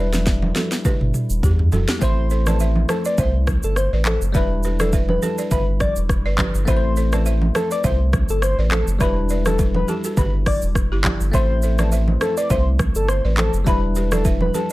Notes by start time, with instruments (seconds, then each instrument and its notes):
Already playing: analog synth bass E1, tine electric piano G3 D4 E4 B4
0.13 snare, high conga, shaker
0.26 kick, snare, shaker
0.42 high conga
0.56 balafon F#4 A4, snare, high conga, shaker
0.72 snare, shaker
0.85 balafon G4 B4, kick, low conga, shaker
1.01 analog synth bass G1, mid tom
1.14 mid tom, shaker
1.30 analog synth bass E1, shaker
1.43 analog synth bass E2, balafon E4 G4, kick, floor tom, shaker
1.59 floor tom
1.72 analog synth bass E1, balafon F#4 A4, floor tom, high conga, shaker
1.88 balafon E4 G4, snare, shaker
1.99 analog synth bass A1, tine electric piano A3 C4 E4, soft synth lead C5, balafon C5 E5, kick, low conga, shaker
2.04 tine electric piano C5
2.30 balafon A4 C5, shaker
2.46 soft synth lead A4, balafon B4 D5, cross-stick, high conga, shaker
2.60 balafon C5 E5, shaker
2.76 high conga
2.89 soft synth lead A4, balafon A4 C5, cross-stick, high conga, shaker
3.05 balafon B4 D5, soft synth lead D5, shaker
3.18 analog synth bass C2, balafon C5 E5, soft synth lead C5, kick, low conga, shaker
3.47 kick, cross-stick, high conga, shaker
3.63 analog synth bass G1, soft synth lead A4, shaker
3.76 soft synth lead C5, cross-stick, shaker
3.93 analog synth bass A1, balafon B4 D5
4.05 soft synth lead A4, balafon A4 C5, clap, high conga, shaker
4.21 analog synth bass F#1, shaker
4.32 analog synth bass E1, tine electric piano G3 D4 E4, soft synth lead B4, balafon B4 E5, kick, low conga, shaker
4.37 tine electric piano B4
4.63 balafon G4 B4, shaker
4.80 soft synth lead A4, balafon B4 D5, cross-stick, high conga, shaker
4.93 balafon B4 E5, kick, shaker
5.09 soft synth lead B4, high conga
5.22 balafon G4 B4, soft synth lead A4, high conga, shaker
5.38 balafon B4 D5, shaker
5.51 analog synth bass G1, soft synth lead B4, balafon B4 E5, kick, low conga, shaker
5.80 soft synth lead D5, kick, cross-stick, high conga, shaker
5.96 analog synth bass E1, shaker
6.09 kick, cross-stick, shaker
6.25 analog synth bass G1, balafon B4 D5
6.38 balafon G4 B4, kick, clap, high conga, shaker
6.54 analog synth bass G1, shaker
6.65 analog synth bass A1, tine electric piano A3 C4 E4, soft synth lead C5, balafon C5 E5, kick, low conga, shaker
6.70 tine electric piano B4
6.77 tine electric piano C5
6.96 balafon A4 C5, shaker
7.12 soft synth lead A4, balafon B4 D5, cross-stick, high conga, shaker
7.26 balafon C5 E5, shaker
7.42 high conga
7.55 soft synth lead A4, balafon A4 C5, cross-stick, high conga, shaker
7.71 balafon B4 D5, soft synth lead D5, shaker
7.84 analog synth bass C2, soft synth lead C5, balafon C5 E5, kick, low conga, shaker
8.13 kick, cross-stick, high conga, shaker
8.29 analog synth bass G1, soft synth lead A4, shaker
8.42 soft synth lead C5, cross-stick, shaker
8.58 analog synth bass A1, balafon B4 D5
8.71 soft synth lead A4, balafon A4 C5, clap, high conga, shaker
8.87 analog synth bass F#1, shaker
8.99 analog synth bass E1, tine electric piano G3 D4 E4, soft synth lead B4, balafon B4 E5, kick, cross-stick, low conga, shaker
9.04 tine electric piano B4
9.29 balafon B4 D5, shaker
9.46 balafon G4 B4, soft synth lead A4, cross-stick, high conga, shaker
9.59 balafon E4 A4, kick, shaker
9.75 soft synth lead B4, high conga
9.88 balafon E4 G4, soft synth lead A4, high conga, shaker
10.04 balafon F#4 A4, shaker
10.17 analog synth bass G1, balafon G4 B4, soft synth lead B4, kick, low conga, shaker
10.46 soft synth lead D5, kick, cross-stick, open hi-hat, high conga, shaker
10.62 analog synth bass E1, shaker
10.75 kick, cross-stick, shaker
10.91 analog synth bass G1, balafon E4 G4
11.04 balafon E4 G4, kick, clap, high conga, shaker
11.21 analog synth bass G1, shaker
11.31 analog synth bass A1, tine electric piano A3 C4 E4, soft synth lead C5, balafon C5 E5, kick, low conga, shaker
11.37 tine electric piano C5
11.62 balafon A4 C5, shaker
11.79 soft synth lead A4, balafon B4 D5, cross-stick, high conga, shaker
11.92 balafon C5 E5, shaker
12.08 high conga
12.21 soft synth lead A4, balafon A4 C5, cross-stick, high conga, shaker
12.37 balafon B4 D5, soft synth lead D5, shaker
12.50 analog synth bass C2, soft synth lead C5, balafon C5 E5, kick, low conga, shaker
12.79 kick, cross-stick, high conga, shaker
12.95 analog synth bass G1, soft synth lead A4, shaker
13.09 soft synth lead C5, cross-stick, shaker
13.24 analog synth bass A1, balafon B4 D5
13.37 soft synth lead A4, balafon A4 C5, clap, high conga, shaker
13.53 analog synth bass F#1, shaker
13.64 analog synth bass E1, tine electric piano G3 D4 E4, soft synth lead B4, balafon B4 E5, kick, low conga, shaker
13.69 tine electric piano B4
13.95 balafon G4 B4, shaker
14.12 soft synth lead A4, balafon B4 D5, cross-stick, high conga, shaker
14.25 balafon B4 E5, kick, shaker
14.40 soft synth lead B4, high conga
14.54 balafon G4 B4, soft synth lead A4, high conga, shaker